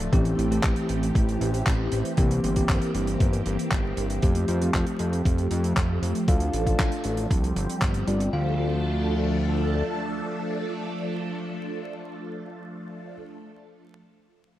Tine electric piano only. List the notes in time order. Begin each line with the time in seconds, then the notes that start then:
0.13 E3 A3 C4 G4
0.51 E3 A3 C4 G4
2.18 E3 A#3 C4 G4
2.56 E3 A#3 C4 G4
4.23 F3 A3 C4 G4
4.61 F3 A3 C4 G4
6.28 D4 F4 A4 F5
6.67 D4 F4 A4 F5
8.08 G3 C4 F4 D5
8.33 D4 F4 A4 F5